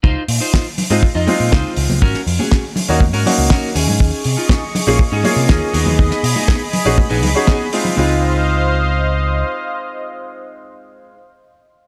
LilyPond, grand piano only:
\new Staff \with { instrumentName = "Grand piano" } { \time 4/4 \key des \major \tempo 4 = 121 r4. r16 <aes c' ees' f'>16 r8 <aes c' ees' f'>4. | r4. r16 <bes des' ees' ges'>16 r8 <bes des' ees' ges'>4 r8 | r4. r16 <bes des' f' aes'>16 r8 <bes des' f' aes'>4 r8 | r4. r16 <des' ees' ges' aes'>16 r8. <des' ees' ges' aes'>8 r16 <aes c' ees' f'>8 |
<aes c' ees' f'>1~ | <aes c' ees' f'>1 | }